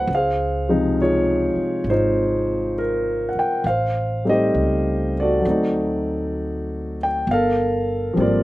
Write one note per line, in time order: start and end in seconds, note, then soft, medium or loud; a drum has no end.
0.00 0.10 E4 medium
0.00 0.11 F#5 medium
0.07 1.52 C#2 medium
0.15 1.00 G#4 soft
0.15 1.84 C5 medium
0.15 0.95 F5 medium
0.69 3.64 C3 medium
0.69 3.64 F3 medium
0.69 3.64 G#3 soft
0.69 1.89 D#4 medium
1.02 1.90 F4 medium
1.02 2.73 G#4 medium
1.02 1.83 C#5 medium
1.56 muted upright bass stroke soft
1.84 3.31 G#1 medium
1.90 3.62 D#4 soft
1.90 3.63 F4 soft
1.90 2.79 C5 medium
2.78 3.29 A#4 medium
3.29 3.37 F#5 soft
3.35 3.66 G5 medium
3.35 muted upright bass stroke soft
3.64 4.50 A1 medium
3.64 4.23 F5 medium
3.69 4.30 C5 medium
4.25 5.44 G3 soft
4.25 5.41 A3 soft
4.25 5.45 C4 soft
4.25 5.45 D#4 soft
4.29 5.43 G4 medium
4.29 5.43 C5 medium
4.29 5.14 D#5 medium
4.54 5.41 C#2 medium
5.20 6.97 F#4 medium
5.20 6.97 A4 soft
5.20 7.05 D5 medium
5.39 7.24 F#3 soft
5.39 7.26 A3 soft
5.45 7.23 D2 medium
5.45 7.27 C4 soft
5.50 7.29 D#4 soft
7.03 7.30 G5 medium
7.27 8.13 G1 medium
7.31 8.43 A4 medium
7.31 8.20 A#4 medium
7.31 8.15 F5 medium
8.13 8.43 G#1 medium
8.13 8.43 F3 soft
8.13 8.43 G3 soft
8.13 8.43 A#3 soft
8.18 8.43 C4 soft
8.18 8.43 F4 medium
8.18 8.43 A#4 soft
8.18 8.43 D5 medium